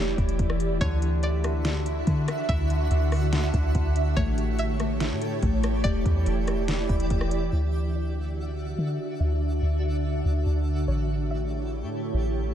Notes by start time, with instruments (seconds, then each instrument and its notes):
Already playing: 808-style bass E1, ambient pad E3 E4 G4 D5, harp E3 A3 E4 G4 A4, synth pluck D5
0.18 808-style bass E1, harp E4, kick, closed hi-hat
0.29 closed hi-hat
0.39 808-style bass E1, kick, closed hi-hat
0.50 cross-stick
0.60 closed hi-hat
0.81 808-style bass D2, harp D3, ambient pad D3 D4 F#4 E5, synth texture E4 F#5 C#6, synth pluck C#5, kick, closed hi-hat
1.02 harp D4, closed hi-hat
1.23 synth pluck D5, closed hi-hat
1.44 harp D3, cross-stick, closed hi-hat
1.65 snare, closed hi-hat
1.86 harp E4, closed hi-hat
2.07 808-style bass D3, harp D3, kick, closed hi-hat
2.28 cross-stick, closed hi-hat
2.49 808-style bass D2, harp E4, synth pluck E5, kick, closed hi-hat
2.70 harp D3, closed hi-hat
2.90 808-style bass D2, harp D4, closed hi-hat
3.12 cross-stick, open hi-hat
3.32 harp D3, snare, closed hi-hat
3.54 808-style bass D2, harp D4, kick, closed hi-hat
3.75 808-style bass D2, kick, closed hi-hat
3.96 closed hi-hat
4.17 808-style bass A1, ambient pad A3 E4 G4 C#5, harp A3, synth texture G4 A5, synth pluck C#5, kick, closed hi-hat
4.38 harp G4, closed hi-hat
4.59 synth pluck E5, closed hi-hat
4.80 harp A3, cross-stick, closed hi-hat
5.00 snare, closed hi-hat
5.11 808-style bass A2
5.22 harp A4, closed hi-hat
5.42 808-style bass A1, harp A3, kick, closed hi-hat
5.63 cross-stick, closed hi-hat
5.84 808-style bass E1, ambient pad E3 D5, synth texture E4 D5 G5, harp G4, synth pluck D5, kick, closed hi-hat
6.06 808-style bass E2, harp E3, kick, closed hi-hat
6.26 808-style bass E1, harp E4, closed hi-hat
6.47 cross-stick, closed hi-hat
6.68 harp E3, snare, closed hi-hat
6.89 808-style bass E1, harp E4, kick, closed hi-hat
7.00 closed hi-hat
7.10 808-style bass E1, kick, closed hi-hat
7.21 cross-stick
7.31 closed hi-hat
7.52 808-style bass D2, ambient pad D3 D4 F#4 E5, synth texture D4 F#4 E5, synth pluck C#5
7.95 synth pluck D5
8.78 808-style bass D3
9.20 808-style bass D2, synth pluck E5
9.62 808-style bass D2
10.25 808-style bass D2
10.46 808-style bass D2
10.88 808-style bass A1, ambient pad A3 E4 G4 C#5, synth texture A3 G4 C#5, synth pluck C#5
11.31 synth pluck E5
11.83 808-style bass A2
12.14 808-style bass A1